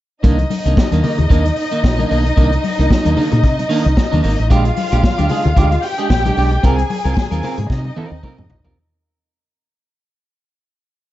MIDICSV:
0, 0, Header, 1, 6, 480
1, 0, Start_track
1, 0, Key_signature, -3, "minor"
1, 0, Tempo, 533333
1, 216, Time_signature, 4, 2, 24, 8
1, 10009, End_track
2, 0, Start_track
2, 0, Title_t, "String section"
2, 0, Program_c, 0, 48
2, 212, Note_on_c, 0, 63, 78
2, 217, Note_on_c, 0, 75, 89
2, 4018, Note_off_c, 0, 63, 0
2, 4020, Note_off_c, 0, 75, 0
2, 4060, Note_on_c, 0, 65, 73
2, 4061, Note_on_c, 0, 77, 84
2, 5233, Note_off_c, 0, 65, 0
2, 5233, Note_off_c, 0, 77, 0
2, 5249, Note_on_c, 0, 79, 85
2, 5252, Note_on_c, 0, 67, 82
2, 5957, Note_off_c, 0, 79, 0
2, 5959, Note_off_c, 0, 67, 0
2, 5970, Note_on_c, 0, 80, 92
2, 5972, Note_on_c, 0, 68, 75
2, 6913, Note_off_c, 0, 80, 0
2, 6914, Note_off_c, 0, 68, 0
2, 6935, Note_on_c, 0, 63, 73
2, 6935, Note_on_c, 0, 75, 76
2, 7876, Note_off_c, 0, 63, 0
2, 7876, Note_off_c, 0, 75, 0
2, 10009, End_track
3, 0, Start_track
3, 0, Title_t, "Clean electric guitar"
3, 0, Program_c, 1, 27
3, 207, Note_on_c, 1, 51, 81
3, 214, Note_on_c, 1, 58, 90
3, 222, Note_on_c, 1, 62, 92
3, 336, Note_off_c, 1, 62, 0
3, 346, Note_off_c, 1, 58, 0
3, 371, Note_off_c, 1, 51, 0
3, 586, Note_on_c, 1, 62, 55
3, 595, Note_on_c, 1, 58, 56
3, 600, Note_on_c, 1, 51, 48
3, 683, Note_off_c, 1, 51, 0
3, 690, Note_off_c, 1, 58, 0
3, 690, Note_off_c, 1, 62, 0
3, 825, Note_on_c, 1, 62, 70
3, 833, Note_on_c, 1, 58, 66
3, 840, Note_on_c, 1, 51, 59
3, 917, Note_off_c, 1, 51, 0
3, 924, Note_off_c, 1, 58, 0
3, 928, Note_on_c, 1, 51, 60
3, 935, Note_on_c, 1, 58, 69
3, 937, Note_off_c, 1, 62, 0
3, 941, Note_on_c, 1, 63, 74
3, 1059, Note_off_c, 1, 63, 0
3, 1062, Note_off_c, 1, 51, 0
3, 1063, Note_off_c, 1, 58, 0
3, 1163, Note_on_c, 1, 51, 67
3, 1173, Note_on_c, 1, 58, 73
3, 1180, Note_on_c, 1, 62, 78
3, 1288, Note_off_c, 1, 62, 0
3, 1296, Note_off_c, 1, 58, 0
3, 1329, Note_off_c, 1, 51, 0
3, 1542, Note_on_c, 1, 63, 59
3, 1547, Note_on_c, 1, 58, 57
3, 1556, Note_on_c, 1, 51, 56
3, 1638, Note_off_c, 1, 51, 0
3, 1645, Note_off_c, 1, 58, 0
3, 1649, Note_off_c, 1, 63, 0
3, 1782, Note_on_c, 1, 62, 62
3, 1790, Note_on_c, 1, 58, 57
3, 1794, Note_on_c, 1, 51, 46
3, 1877, Note_off_c, 1, 51, 0
3, 1883, Note_off_c, 1, 58, 0
3, 1888, Note_on_c, 1, 51, 84
3, 1889, Note_off_c, 1, 62, 0
3, 1894, Note_on_c, 1, 58, 82
3, 1900, Note_on_c, 1, 62, 82
3, 2012, Note_off_c, 1, 62, 0
3, 2022, Note_off_c, 1, 58, 0
3, 2051, Note_off_c, 1, 51, 0
3, 2126, Note_on_c, 1, 51, 83
3, 2135, Note_on_c, 1, 58, 84
3, 2139, Note_on_c, 1, 62, 81
3, 2256, Note_off_c, 1, 62, 0
3, 2264, Note_off_c, 1, 58, 0
3, 2290, Note_off_c, 1, 51, 0
3, 2508, Note_on_c, 1, 62, 57
3, 2515, Note_on_c, 1, 58, 52
3, 2521, Note_on_c, 1, 51, 42
3, 2603, Note_off_c, 1, 51, 0
3, 2610, Note_off_c, 1, 58, 0
3, 2611, Note_off_c, 1, 62, 0
3, 2745, Note_on_c, 1, 62, 69
3, 2753, Note_on_c, 1, 58, 58
3, 2759, Note_on_c, 1, 51, 62
3, 2841, Note_off_c, 1, 51, 0
3, 2848, Note_off_c, 1, 58, 0
3, 2852, Note_on_c, 1, 51, 60
3, 2854, Note_off_c, 1, 62, 0
3, 2859, Note_on_c, 1, 58, 61
3, 2865, Note_on_c, 1, 62, 70
3, 2975, Note_off_c, 1, 62, 0
3, 2984, Note_off_c, 1, 51, 0
3, 2987, Note_off_c, 1, 58, 0
3, 3324, Note_on_c, 1, 51, 98
3, 3334, Note_on_c, 1, 58, 96
3, 3338, Note_on_c, 1, 62, 94
3, 3452, Note_off_c, 1, 62, 0
3, 3463, Note_off_c, 1, 58, 0
3, 3488, Note_off_c, 1, 51, 0
3, 3704, Note_on_c, 1, 62, 79
3, 3712, Note_on_c, 1, 58, 70
3, 3719, Note_on_c, 1, 51, 71
3, 3799, Note_off_c, 1, 51, 0
3, 3806, Note_off_c, 1, 58, 0
3, 3810, Note_on_c, 1, 51, 66
3, 3817, Note_on_c, 1, 58, 62
3, 3820, Note_off_c, 1, 62, 0
3, 3824, Note_on_c, 1, 63, 67
3, 3942, Note_off_c, 1, 51, 0
3, 3945, Note_off_c, 1, 63, 0
3, 3946, Note_off_c, 1, 58, 0
3, 4051, Note_on_c, 1, 56, 89
3, 4060, Note_on_c, 1, 62, 91
3, 4063, Note_on_c, 1, 67, 86
3, 4178, Note_off_c, 1, 67, 0
3, 4188, Note_off_c, 1, 62, 0
3, 4212, Note_off_c, 1, 56, 0
3, 4428, Note_on_c, 1, 67, 66
3, 4435, Note_on_c, 1, 62, 53
3, 4441, Note_on_c, 1, 56, 55
3, 4521, Note_off_c, 1, 56, 0
3, 4528, Note_off_c, 1, 62, 0
3, 4531, Note_off_c, 1, 67, 0
3, 4663, Note_on_c, 1, 67, 69
3, 4671, Note_on_c, 1, 62, 70
3, 4677, Note_on_c, 1, 56, 53
3, 4759, Note_off_c, 1, 56, 0
3, 4766, Note_off_c, 1, 62, 0
3, 4770, Note_on_c, 1, 56, 68
3, 4777, Note_on_c, 1, 62, 64
3, 4779, Note_off_c, 1, 67, 0
3, 4783, Note_on_c, 1, 68, 72
3, 4897, Note_off_c, 1, 68, 0
3, 4898, Note_off_c, 1, 62, 0
3, 4902, Note_off_c, 1, 56, 0
3, 5009, Note_on_c, 1, 56, 74
3, 5014, Note_on_c, 1, 62, 73
3, 5021, Note_on_c, 1, 67, 89
3, 5135, Note_off_c, 1, 67, 0
3, 5147, Note_off_c, 1, 62, 0
3, 5171, Note_off_c, 1, 56, 0
3, 5383, Note_on_c, 1, 68, 62
3, 5388, Note_on_c, 1, 62, 61
3, 5395, Note_on_c, 1, 56, 51
3, 5479, Note_off_c, 1, 56, 0
3, 5484, Note_off_c, 1, 62, 0
3, 5487, Note_off_c, 1, 68, 0
3, 5626, Note_on_c, 1, 67, 61
3, 5633, Note_on_c, 1, 62, 57
3, 5637, Note_on_c, 1, 56, 53
3, 5723, Note_off_c, 1, 56, 0
3, 5729, Note_off_c, 1, 62, 0
3, 5729, Note_off_c, 1, 67, 0
3, 5733, Note_on_c, 1, 56, 65
3, 5740, Note_on_c, 1, 62, 80
3, 5747, Note_on_c, 1, 67, 92
3, 5858, Note_off_c, 1, 67, 0
3, 5868, Note_off_c, 1, 62, 0
3, 5893, Note_off_c, 1, 56, 0
3, 5968, Note_on_c, 1, 60, 94
3, 5977, Note_on_c, 1, 65, 85
3, 5983, Note_on_c, 1, 70, 93
3, 6093, Note_off_c, 1, 70, 0
3, 6103, Note_off_c, 1, 65, 0
3, 6130, Note_off_c, 1, 60, 0
3, 6340, Note_on_c, 1, 70, 61
3, 6349, Note_on_c, 1, 65, 56
3, 6353, Note_on_c, 1, 60, 44
3, 6436, Note_off_c, 1, 60, 0
3, 6442, Note_off_c, 1, 65, 0
3, 6446, Note_off_c, 1, 70, 0
3, 6580, Note_on_c, 1, 70, 65
3, 6589, Note_on_c, 1, 65, 69
3, 6593, Note_on_c, 1, 60, 56
3, 6678, Note_off_c, 1, 60, 0
3, 6685, Note_off_c, 1, 65, 0
3, 6689, Note_on_c, 1, 60, 69
3, 6691, Note_off_c, 1, 70, 0
3, 6696, Note_on_c, 1, 65, 73
3, 6702, Note_on_c, 1, 70, 80
3, 6814, Note_off_c, 1, 70, 0
3, 6821, Note_off_c, 1, 60, 0
3, 6822, Note_off_c, 1, 65, 0
3, 7167, Note_on_c, 1, 60, 81
3, 7174, Note_on_c, 1, 65, 89
3, 7182, Note_on_c, 1, 70, 86
3, 7294, Note_off_c, 1, 70, 0
3, 7302, Note_off_c, 1, 65, 0
3, 7357, Note_off_c, 1, 60, 0
3, 7406, Note_on_c, 1, 60, 90
3, 7414, Note_on_c, 1, 65, 76
3, 7419, Note_on_c, 1, 70, 102
3, 7532, Note_off_c, 1, 70, 0
3, 7542, Note_off_c, 1, 65, 0
3, 7569, Note_off_c, 1, 60, 0
3, 7780, Note_on_c, 1, 70, 63
3, 7786, Note_on_c, 1, 65, 50
3, 7790, Note_on_c, 1, 60, 49
3, 7887, Note_off_c, 1, 70, 0
3, 7890, Note_off_c, 1, 65, 0
3, 7892, Note_off_c, 1, 60, 0
3, 10009, End_track
4, 0, Start_track
4, 0, Title_t, "Fingered electric bass"
4, 0, Program_c, 2, 33
4, 215, Note_on_c, 2, 36, 107
4, 387, Note_off_c, 2, 36, 0
4, 589, Note_on_c, 2, 36, 84
4, 665, Note_off_c, 2, 36, 0
4, 830, Note_on_c, 2, 39, 73
4, 906, Note_off_c, 2, 39, 0
4, 1069, Note_on_c, 2, 39, 78
4, 1146, Note_off_c, 2, 39, 0
4, 1173, Note_on_c, 2, 39, 93
4, 1346, Note_off_c, 2, 39, 0
4, 1656, Note_on_c, 2, 34, 98
4, 1828, Note_off_c, 2, 34, 0
4, 1899, Note_on_c, 2, 35, 81
4, 2070, Note_off_c, 2, 35, 0
4, 2137, Note_on_c, 2, 36, 108
4, 2308, Note_off_c, 2, 36, 0
4, 2512, Note_on_c, 2, 36, 91
4, 2587, Note_off_c, 2, 36, 0
4, 2753, Note_on_c, 2, 39, 89
4, 2828, Note_off_c, 2, 39, 0
4, 2993, Note_on_c, 2, 46, 76
4, 3094, Note_off_c, 2, 46, 0
4, 3094, Note_on_c, 2, 48, 101
4, 3266, Note_off_c, 2, 48, 0
4, 3474, Note_on_c, 2, 36, 96
4, 3548, Note_off_c, 2, 36, 0
4, 3713, Note_on_c, 2, 39, 83
4, 3788, Note_off_c, 2, 39, 0
4, 3819, Note_on_c, 2, 32, 92
4, 3914, Note_off_c, 2, 32, 0
4, 3957, Note_on_c, 2, 33, 83
4, 4056, Note_off_c, 2, 33, 0
4, 4056, Note_on_c, 2, 34, 105
4, 4227, Note_off_c, 2, 34, 0
4, 4432, Note_on_c, 2, 34, 96
4, 4506, Note_off_c, 2, 34, 0
4, 4672, Note_on_c, 2, 38, 83
4, 4747, Note_off_c, 2, 38, 0
4, 4911, Note_on_c, 2, 38, 86
4, 4986, Note_off_c, 2, 38, 0
4, 5010, Note_on_c, 2, 38, 89
4, 5183, Note_off_c, 2, 38, 0
4, 5492, Note_on_c, 2, 34, 93
4, 5664, Note_off_c, 2, 34, 0
4, 5734, Note_on_c, 2, 35, 77
4, 5906, Note_off_c, 2, 35, 0
4, 5974, Note_on_c, 2, 36, 97
4, 6145, Note_off_c, 2, 36, 0
4, 6345, Note_on_c, 2, 36, 94
4, 6422, Note_off_c, 2, 36, 0
4, 6583, Note_on_c, 2, 39, 91
4, 6660, Note_off_c, 2, 39, 0
4, 6821, Note_on_c, 2, 44, 82
4, 6899, Note_off_c, 2, 44, 0
4, 6930, Note_on_c, 2, 48, 92
4, 7103, Note_off_c, 2, 48, 0
4, 7303, Note_on_c, 2, 39, 85
4, 7381, Note_off_c, 2, 39, 0
4, 7546, Note_on_c, 2, 41, 84
4, 7622, Note_off_c, 2, 41, 0
4, 7783, Note_on_c, 2, 35, 72
4, 7861, Note_off_c, 2, 35, 0
4, 10009, End_track
5, 0, Start_track
5, 0, Title_t, "Muted clean electric guitar strokes"
5, 347, Note_on_c, 9, 29, 41
5, 437, Note_off_c, 9, 29, 0
5, 456, Note_on_c, 9, 29, 50
5, 546, Note_off_c, 9, 29, 0
5, 694, Note_on_c, 9, 29, 37
5, 784, Note_off_c, 9, 29, 0
5, 1063, Note_on_c, 9, 29, 37
5, 1153, Note_off_c, 9, 29, 0
5, 1299, Note_on_c, 9, 29, 57
5, 1389, Note_off_c, 9, 29, 0
5, 1405, Note_on_c, 9, 29, 46
5, 1495, Note_off_c, 9, 29, 0
5, 1649, Note_on_c, 9, 29, 37
5, 1739, Note_off_c, 9, 29, 0
5, 2023, Note_on_c, 9, 29, 42
5, 2113, Note_off_c, 9, 29, 0
5, 2267, Note_on_c, 9, 29, 41
5, 2357, Note_off_c, 9, 29, 0
5, 2369, Note_on_c, 9, 29, 38
5, 2459, Note_off_c, 9, 29, 0
5, 2614, Note_on_c, 9, 29, 44
5, 2704, Note_off_c, 9, 29, 0
5, 2986, Note_on_c, 9, 29, 43
5, 3076, Note_off_c, 9, 29, 0
5, 3225, Note_on_c, 9, 29, 54
5, 3315, Note_off_c, 9, 29, 0
5, 3463, Note_on_c, 9, 29, 56
5, 3553, Note_off_c, 9, 29, 0
5, 3570, Note_on_c, 9, 29, 34
5, 3660, Note_off_c, 9, 29, 0
5, 3949, Note_on_c, 9, 29, 46
5, 4039, Note_off_c, 9, 29, 0
5, 4188, Note_on_c, 9, 29, 44
5, 4278, Note_off_c, 9, 29, 0
5, 4294, Note_on_c, 9, 29, 41
5, 4384, Note_off_c, 9, 29, 0
5, 4900, Note_on_c, 9, 29, 42
5, 4990, Note_off_c, 9, 29, 0
5, 5146, Note_on_c, 9, 29, 43
5, 5236, Note_off_c, 9, 29, 0
5, 5248, Note_on_c, 9, 29, 57
5, 5338, Note_off_c, 9, 29, 0
5, 5490, Note_on_c, 9, 29, 41
5, 5580, Note_off_c, 9, 29, 0
5, 5869, Note_on_c, 9, 29, 46
5, 5959, Note_off_c, 9, 29, 0
5, 6104, Note_on_c, 9, 29, 41
5, 6194, Note_off_c, 9, 29, 0
5, 6208, Note_on_c, 9, 29, 49
5, 6298, Note_off_c, 9, 29, 0
5, 6447, Note_on_c, 9, 29, 37
5, 6537, Note_off_c, 9, 29, 0
5, 7064, Note_on_c, 9, 29, 40
5, 7154, Note_off_c, 9, 29, 0
5, 7305, Note_on_c, 9, 29, 45
5, 7395, Note_off_c, 9, 29, 0
5, 7543, Note_on_c, 9, 29, 38
5, 7633, Note_off_c, 9, 29, 0
5, 7649, Note_on_c, 9, 29, 36
5, 7739, Note_off_c, 9, 29, 0
5, 10009, End_track
6, 0, Start_track
6, 0, Title_t, "Drums"
6, 213, Note_on_c, 9, 42, 72
6, 215, Note_on_c, 9, 36, 103
6, 303, Note_off_c, 9, 42, 0
6, 305, Note_off_c, 9, 36, 0
6, 347, Note_on_c, 9, 42, 39
6, 347, Note_on_c, 9, 62, 30
6, 437, Note_off_c, 9, 42, 0
6, 437, Note_off_c, 9, 62, 0
6, 452, Note_on_c, 9, 63, 68
6, 454, Note_on_c, 9, 46, 68
6, 542, Note_off_c, 9, 63, 0
6, 544, Note_off_c, 9, 46, 0
6, 594, Note_on_c, 9, 42, 52
6, 684, Note_off_c, 9, 42, 0
6, 687, Note_on_c, 9, 62, 31
6, 687, Note_on_c, 9, 63, 66
6, 694, Note_on_c, 9, 36, 121
6, 701, Note_on_c, 9, 38, 112
6, 777, Note_off_c, 9, 62, 0
6, 777, Note_off_c, 9, 63, 0
6, 784, Note_off_c, 9, 36, 0
6, 791, Note_off_c, 9, 38, 0
6, 823, Note_on_c, 9, 63, 76
6, 830, Note_on_c, 9, 42, 59
6, 913, Note_off_c, 9, 63, 0
6, 920, Note_off_c, 9, 42, 0
6, 929, Note_on_c, 9, 64, 74
6, 933, Note_on_c, 9, 46, 68
6, 1019, Note_off_c, 9, 64, 0
6, 1023, Note_off_c, 9, 46, 0
6, 1064, Note_on_c, 9, 64, 72
6, 1066, Note_on_c, 9, 42, 46
6, 1154, Note_off_c, 9, 64, 0
6, 1156, Note_off_c, 9, 42, 0
6, 1173, Note_on_c, 9, 36, 103
6, 1176, Note_on_c, 9, 62, 35
6, 1180, Note_on_c, 9, 42, 63
6, 1263, Note_off_c, 9, 36, 0
6, 1266, Note_off_c, 9, 62, 0
6, 1270, Note_off_c, 9, 42, 0
6, 1307, Note_on_c, 9, 62, 37
6, 1309, Note_on_c, 9, 42, 45
6, 1397, Note_off_c, 9, 62, 0
6, 1399, Note_off_c, 9, 42, 0
6, 1407, Note_on_c, 9, 46, 63
6, 1497, Note_off_c, 9, 46, 0
6, 1545, Note_on_c, 9, 42, 43
6, 1635, Note_off_c, 9, 42, 0
6, 1655, Note_on_c, 9, 36, 103
6, 1655, Note_on_c, 9, 62, 41
6, 1659, Note_on_c, 9, 38, 109
6, 1745, Note_off_c, 9, 36, 0
6, 1745, Note_off_c, 9, 62, 0
6, 1749, Note_off_c, 9, 38, 0
6, 1789, Note_on_c, 9, 62, 32
6, 1789, Note_on_c, 9, 63, 66
6, 1789, Note_on_c, 9, 64, 67
6, 1796, Note_on_c, 9, 42, 48
6, 1879, Note_off_c, 9, 62, 0
6, 1879, Note_off_c, 9, 63, 0
6, 1879, Note_off_c, 9, 64, 0
6, 1886, Note_off_c, 9, 42, 0
6, 1897, Note_on_c, 9, 46, 56
6, 1987, Note_off_c, 9, 46, 0
6, 2031, Note_on_c, 9, 42, 39
6, 2121, Note_off_c, 9, 42, 0
6, 2130, Note_on_c, 9, 62, 37
6, 2137, Note_on_c, 9, 36, 109
6, 2137, Note_on_c, 9, 42, 74
6, 2220, Note_off_c, 9, 62, 0
6, 2227, Note_off_c, 9, 36, 0
6, 2227, Note_off_c, 9, 42, 0
6, 2267, Note_on_c, 9, 62, 32
6, 2270, Note_on_c, 9, 42, 42
6, 2357, Note_off_c, 9, 62, 0
6, 2360, Note_off_c, 9, 42, 0
6, 2374, Note_on_c, 9, 46, 74
6, 2377, Note_on_c, 9, 63, 67
6, 2464, Note_off_c, 9, 46, 0
6, 2467, Note_off_c, 9, 63, 0
6, 2516, Note_on_c, 9, 42, 49
6, 2606, Note_off_c, 9, 42, 0
6, 2608, Note_on_c, 9, 62, 28
6, 2608, Note_on_c, 9, 63, 63
6, 2615, Note_on_c, 9, 36, 116
6, 2621, Note_on_c, 9, 38, 106
6, 2698, Note_off_c, 9, 62, 0
6, 2698, Note_off_c, 9, 63, 0
6, 2705, Note_off_c, 9, 36, 0
6, 2711, Note_off_c, 9, 38, 0
6, 2746, Note_on_c, 9, 63, 65
6, 2750, Note_on_c, 9, 42, 57
6, 2836, Note_off_c, 9, 63, 0
6, 2840, Note_off_c, 9, 42, 0
6, 2851, Note_on_c, 9, 46, 74
6, 2851, Note_on_c, 9, 64, 70
6, 2941, Note_off_c, 9, 46, 0
6, 2941, Note_off_c, 9, 64, 0
6, 2984, Note_on_c, 9, 42, 48
6, 2985, Note_on_c, 9, 64, 74
6, 3074, Note_off_c, 9, 42, 0
6, 3075, Note_off_c, 9, 64, 0
6, 3093, Note_on_c, 9, 36, 105
6, 3099, Note_on_c, 9, 42, 60
6, 3183, Note_off_c, 9, 36, 0
6, 3189, Note_off_c, 9, 42, 0
6, 3232, Note_on_c, 9, 42, 43
6, 3233, Note_on_c, 9, 62, 34
6, 3322, Note_off_c, 9, 42, 0
6, 3323, Note_off_c, 9, 62, 0
6, 3327, Note_on_c, 9, 46, 64
6, 3417, Note_off_c, 9, 46, 0
6, 3463, Note_on_c, 9, 42, 42
6, 3553, Note_off_c, 9, 42, 0
6, 3574, Note_on_c, 9, 36, 104
6, 3574, Note_on_c, 9, 38, 116
6, 3580, Note_on_c, 9, 62, 43
6, 3664, Note_off_c, 9, 36, 0
6, 3664, Note_off_c, 9, 38, 0
6, 3670, Note_off_c, 9, 62, 0
6, 3713, Note_on_c, 9, 42, 47
6, 3715, Note_on_c, 9, 62, 31
6, 3715, Note_on_c, 9, 63, 70
6, 3715, Note_on_c, 9, 64, 61
6, 3803, Note_off_c, 9, 42, 0
6, 3805, Note_off_c, 9, 62, 0
6, 3805, Note_off_c, 9, 63, 0
6, 3805, Note_off_c, 9, 64, 0
6, 3814, Note_on_c, 9, 46, 65
6, 3904, Note_off_c, 9, 46, 0
6, 3948, Note_on_c, 9, 42, 41
6, 4038, Note_off_c, 9, 42, 0
6, 4053, Note_on_c, 9, 42, 76
6, 4055, Note_on_c, 9, 36, 111
6, 4056, Note_on_c, 9, 62, 30
6, 4143, Note_off_c, 9, 42, 0
6, 4145, Note_off_c, 9, 36, 0
6, 4146, Note_off_c, 9, 62, 0
6, 4186, Note_on_c, 9, 42, 40
6, 4190, Note_on_c, 9, 62, 35
6, 4276, Note_off_c, 9, 42, 0
6, 4280, Note_off_c, 9, 62, 0
6, 4289, Note_on_c, 9, 46, 75
6, 4297, Note_on_c, 9, 63, 68
6, 4379, Note_off_c, 9, 46, 0
6, 4387, Note_off_c, 9, 63, 0
6, 4428, Note_on_c, 9, 42, 47
6, 4518, Note_off_c, 9, 42, 0
6, 4531, Note_on_c, 9, 63, 60
6, 4532, Note_on_c, 9, 36, 127
6, 4535, Note_on_c, 9, 38, 123
6, 4621, Note_off_c, 9, 63, 0
6, 4622, Note_off_c, 9, 36, 0
6, 4625, Note_off_c, 9, 38, 0
6, 4666, Note_on_c, 9, 62, 28
6, 4666, Note_on_c, 9, 63, 68
6, 4667, Note_on_c, 9, 42, 55
6, 4756, Note_off_c, 9, 62, 0
6, 4756, Note_off_c, 9, 63, 0
6, 4757, Note_off_c, 9, 42, 0
6, 4765, Note_on_c, 9, 46, 69
6, 4773, Note_on_c, 9, 64, 76
6, 4855, Note_off_c, 9, 46, 0
6, 4863, Note_off_c, 9, 64, 0
6, 4898, Note_on_c, 9, 42, 45
6, 4907, Note_on_c, 9, 64, 71
6, 4988, Note_off_c, 9, 42, 0
6, 4997, Note_off_c, 9, 64, 0
6, 5009, Note_on_c, 9, 36, 105
6, 5013, Note_on_c, 9, 42, 64
6, 5099, Note_off_c, 9, 36, 0
6, 5103, Note_off_c, 9, 42, 0
6, 5147, Note_on_c, 9, 42, 48
6, 5237, Note_off_c, 9, 42, 0
6, 5242, Note_on_c, 9, 46, 66
6, 5332, Note_off_c, 9, 46, 0
6, 5380, Note_on_c, 9, 42, 36
6, 5470, Note_off_c, 9, 42, 0
6, 5491, Note_on_c, 9, 36, 106
6, 5492, Note_on_c, 9, 38, 125
6, 5495, Note_on_c, 9, 62, 37
6, 5581, Note_off_c, 9, 36, 0
6, 5582, Note_off_c, 9, 38, 0
6, 5585, Note_off_c, 9, 62, 0
6, 5629, Note_on_c, 9, 42, 51
6, 5632, Note_on_c, 9, 62, 30
6, 5632, Note_on_c, 9, 63, 61
6, 5632, Note_on_c, 9, 64, 71
6, 5719, Note_off_c, 9, 42, 0
6, 5722, Note_off_c, 9, 62, 0
6, 5722, Note_off_c, 9, 63, 0
6, 5722, Note_off_c, 9, 64, 0
6, 5731, Note_on_c, 9, 46, 60
6, 5821, Note_off_c, 9, 46, 0
6, 5867, Note_on_c, 9, 42, 42
6, 5957, Note_off_c, 9, 42, 0
6, 5970, Note_on_c, 9, 62, 35
6, 5973, Note_on_c, 9, 36, 98
6, 5973, Note_on_c, 9, 42, 65
6, 6060, Note_off_c, 9, 62, 0
6, 6063, Note_off_c, 9, 36, 0
6, 6063, Note_off_c, 9, 42, 0
6, 6102, Note_on_c, 9, 62, 33
6, 6106, Note_on_c, 9, 42, 44
6, 6192, Note_off_c, 9, 62, 0
6, 6196, Note_off_c, 9, 42, 0
6, 6208, Note_on_c, 9, 46, 72
6, 6211, Note_on_c, 9, 63, 67
6, 6298, Note_off_c, 9, 46, 0
6, 6301, Note_off_c, 9, 63, 0
6, 6349, Note_on_c, 9, 42, 43
6, 6439, Note_off_c, 9, 42, 0
6, 6449, Note_on_c, 9, 62, 28
6, 6449, Note_on_c, 9, 63, 67
6, 6451, Note_on_c, 9, 36, 127
6, 6455, Note_on_c, 9, 38, 109
6, 6539, Note_off_c, 9, 62, 0
6, 6539, Note_off_c, 9, 63, 0
6, 6541, Note_off_c, 9, 36, 0
6, 6545, Note_off_c, 9, 38, 0
6, 6582, Note_on_c, 9, 63, 71
6, 6586, Note_on_c, 9, 42, 59
6, 6672, Note_off_c, 9, 63, 0
6, 6676, Note_off_c, 9, 42, 0
6, 6686, Note_on_c, 9, 46, 64
6, 6690, Note_on_c, 9, 64, 74
6, 6776, Note_off_c, 9, 46, 0
6, 6780, Note_off_c, 9, 64, 0
6, 6819, Note_on_c, 9, 42, 47
6, 6822, Note_on_c, 9, 64, 77
6, 6909, Note_off_c, 9, 42, 0
6, 6912, Note_off_c, 9, 64, 0
6, 6929, Note_on_c, 9, 36, 118
6, 6934, Note_on_c, 9, 62, 34
6, 6935, Note_on_c, 9, 38, 55
6, 7019, Note_off_c, 9, 36, 0
6, 7024, Note_off_c, 9, 62, 0
6, 7025, Note_off_c, 9, 38, 0
6, 7065, Note_on_c, 9, 62, 38
6, 7155, Note_off_c, 9, 62, 0
6, 7171, Note_on_c, 9, 48, 72
6, 7261, Note_off_c, 9, 48, 0
6, 7410, Note_on_c, 9, 36, 105
6, 7410, Note_on_c, 9, 47, 84
6, 7415, Note_on_c, 9, 62, 41
6, 7500, Note_off_c, 9, 36, 0
6, 7500, Note_off_c, 9, 47, 0
6, 7505, Note_off_c, 9, 62, 0
6, 7544, Note_on_c, 9, 45, 73
6, 7548, Note_on_c, 9, 63, 66
6, 7548, Note_on_c, 9, 64, 66
6, 7634, Note_off_c, 9, 45, 0
6, 7638, Note_off_c, 9, 63, 0
6, 7638, Note_off_c, 9, 64, 0
6, 7647, Note_on_c, 9, 43, 92
6, 7737, Note_off_c, 9, 43, 0
6, 7782, Note_on_c, 9, 43, 90
6, 7872, Note_off_c, 9, 43, 0
6, 10009, End_track
0, 0, End_of_file